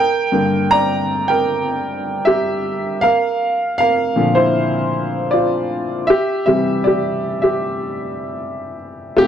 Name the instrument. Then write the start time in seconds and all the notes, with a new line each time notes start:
upright piano
Already playing: A#4 G5
0.32 G2 D3 A#3
0.71 D5 A#5
1.28 A#4 G5
2.25 G4 E5
3.01 A#4 F5
3.78 A#4 F5
4.16 A#2 D3 F3
4.35 E4 C5
5.31 F4 D5
6.07 G4 E5
6.46 C3 E3 G3 G4 E5
6.84 G4 D5
7.42 G4 E5
9.16 F2 C3 A3 F4 G4